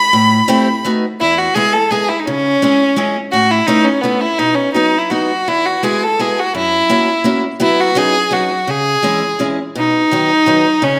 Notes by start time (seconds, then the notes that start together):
Already playing: B5
0.13 A2
0.48 A3 C4 E4 G4
0.85 A3 B3 D#4 F#4
1.20 E2 E4
1.38 F#4
1.54 G#3 B3 E4 G#4
1.72 A4
1.90 G#3 B3 E4 G#4
2.09 E4
2.19 D#4
2.26 C#3 C#4
2.62 G#3 C#4 E4 G#4
2.96 G#3 C#4 E4 G#4
3.32 A2 F#4
3.50 E4
3.66 A3 B3 C#4 D#4 E4
3.84 C#4
4.01 A3 B3 C#4 E4
4.20 E4
4.38 B2 D#4
4.54 C#4
4.74 F#3 B3 D#4 F#4
4.98 E4
5.10 F#3 B3 D#4 F#4
5.48 E2 E4
5.65 F#4
5.83 G#3 B3 E4 F#4 G#4
6.03 A4
6.19 G#3 B3 E4 F#4 G#4
6.39 F#4
6.55 F#2 E4
6.89 A#3 C#4 E4 F#4
7.24 A#3 C#4 E4 F#4
7.60 F#3 B3 E4 F#4
7.80 F#4
7.95 F#3 B3 C#4 D#4 G#4
8.31 F#3 B3 C#4 D#4 F#4
8.67 C#3 G#4
9.03 E3 G#3 C#4 E4
9.39 E3 G#3 C#4 E4
9.75 B2 D#4
10.11 D#3 F#3 B3 D#4
10.46 D#3 F#3 B3 D#4
10.82 C#3 C#4